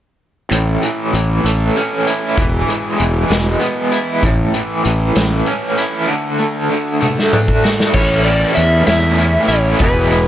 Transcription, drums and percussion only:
0.52 closed hi-hat
0.83 closed hi-hat
1.14 closed hi-hat
1.46 closed hi-hat
1.76 closed hi-hat
2.07 closed hi-hat
2.38 kick, closed hi-hat
2.69 closed hi-hat
3.00 closed hi-hat
3.31 snare, closed hi-hat
3.61 closed hi-hat
3.92 closed hi-hat
4.23 kick, closed hi-hat
4.54 closed hi-hat
4.85 closed hi-hat
5.16 snare, closed hi-hat
5.46 closed hi-hat
5.78 closed hi-hat
7.03 high tom
7.19 snare
7.33 mid tom
7.48 kick
7.65 snare
7.80 snare
7.94 kick, crash
8.25 closed hi-hat
8.56 closed hi-hat
8.87 snare, closed hi-hat
9.18 closed hi-hat
9.49 closed hi-hat
9.79 kick, closed hi-hat
10.11 closed hi-hat

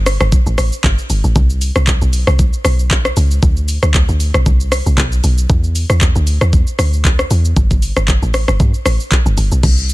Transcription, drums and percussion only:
0.06 cross-stick, open hi-hat, shaker
0.21 cross-stick, shaker
0.32 kick, shaker
0.46 shaker
0.58 cross-stick, open hi-hat, shaker
0.72 shaker
0.84 kick, clap, shaker
0.98 shaker
1.10 open hi-hat, shaker
1.24 shaker
1.36 kick, shaker
1.50 shaker
1.61 open hi-hat, shaker
1.76 cross-stick, shaker
1.87 kick, clap, shaker
2.02 shaker
2.13 open hi-hat, shaker
2.27 cross-stick, shaker
2.39 kick, shaker
2.53 shaker
2.65 cross-stick, open hi-hat, shaker
2.79 shaker
2.91 kick, clap, shaker
3.05 cross-stick, shaker
3.17 open hi-hat, shaker
3.31 shaker
3.43 kick, shaker
3.57 shaker
3.68 open hi-hat, shaker
3.83 cross-stick, shaker
3.94 kick, clap, shaker
4.09 shaker
4.20 open hi-hat, shaker
4.34 cross-stick, shaker
4.46 kick, shaker
4.60 shaker
4.72 cross-stick, open hi-hat, shaker
4.86 shaker
4.98 kick, clap, shaker
5.12 shaker
5.24 open hi-hat, shaker
5.38 shaker
5.49 kick, shaker
5.64 shaker
5.75 open hi-hat, shaker
5.90 cross-stick, shaker
6.01 kick, clap, shaker
6.16 shaker
6.27 open hi-hat, shaker
6.41 cross-stick, shaker
6.53 kick, shaker
6.67 shaker
6.79 cross-stick, open hi-hat, shaker
6.93 shaker
7.05 kick, clap, shaker
7.19 cross-stick, shaker
7.31 open hi-hat, shaker
7.45 shaker
7.56 kick, shaker
7.71 kick, shaker
7.82 open hi-hat, shaker
7.97 cross-stick, shaker
8.08 kick, clap, shaker
8.22 shaker
8.34 cross-stick, open hi-hat, shaker
8.48 cross-stick, shaker
8.60 kick, shaker
8.74 shaker
8.86 cross-stick, open hi-hat, shaker
9.00 shaker
9.11 kick, clap, shaker
9.26 shaker
9.37 open hi-hat, shaker
9.52 shaker
9.63 kick, crash, shaker
9.78 shaker
9.89 shaker

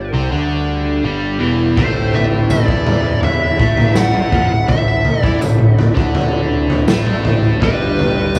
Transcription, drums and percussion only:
1.77 kick, floor tom
2.14 floor tom
2.50 floor tom, tambourine
2.68 kick
2.87 floor tom, mid tom
3.23 floor tom
3.60 kick
3.77 floor tom
3.95 snare, mid tom, tambourine
4.14 mid tom
4.32 kick, floor tom
4.68 kick, floor tom
5.05 floor tom
5.24 kick
5.41 floor tom, tambourine
5.79 floor tom
5.97 kick
6.15 floor tom
6.70 floor tom
6.88 snare, mid tom, tambourine
7.07 mid tom
7.25 floor tom
7.62 kick, floor tom
7.99 floor tom
8.35 floor tom, tambourine

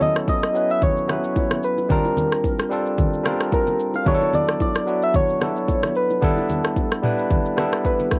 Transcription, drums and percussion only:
0.01 low bongo, low conga, shaker
0.16 cross-stick, shaker
0.28 kick, high bongo, shaker
0.43 cross-stick, shaker
0.55 shaker
0.70 shaker
0.82 kick, low conga, shaker
0.97 shaker
1.09 cross-stick, low bongo, shaker
1.24 shaker
1.36 kick, high bongo, shaker
1.51 cross-stick, low bongo, shaker
1.63 shaker
1.78 high bongo, shaker
1.90 kick, low conga, shaker
2.05 high bongo, shaker
2.17 low bongo, low conga, shaker
2.32 cross-stick, shaker
2.44 kick, high bongo, shaker
2.59 cross-stick, shaker
2.71 shaker
2.86 shaker
2.98 kick, low conga, shaker
3.13 shaker
3.25 cross-stick, low bongo, shaker
3.40 cross-stick, shaker
3.52 kick, high bongo, shaker
3.67 low bongo, shaker
3.79 shaker
3.94 high bongo, shaker
4.06 kick, low conga, shaker
4.21 high bongo, shaker
4.33 low bongo, low conga, shaker
4.48 cross-stick, shaker
4.60 kick, high bongo, shaker
4.75 cross-stick, shaker
4.87 shaker
5.02 shaker
5.14 kick, low conga, shaker
5.29 shaker
5.41 cross-stick, low bongo, shaker
5.56 shaker
5.68 kick, high bongo, shaker
5.83 cross-stick, low bongo, shaker
5.95 shaker
6.10 high bongo, shaker
6.22 kick, low conga, shaker
6.37 high bongo, shaker
6.50 low bongo, low conga, shaker
6.64 cross-stick, shaker
6.76 kick, high bongo, shaker
6.91 cross-stick, shaker
7.04 mid tom, shaker
7.18 shaker
7.31 kick, low conga, shaker
7.45 shaker
7.58 cross-stick, low bongo, shaker
7.73 cross-stick, shaker
7.85 kick, high bongo, shaker
8.00 low bongo, shaker
8.11 kick, cross-stick, shaker

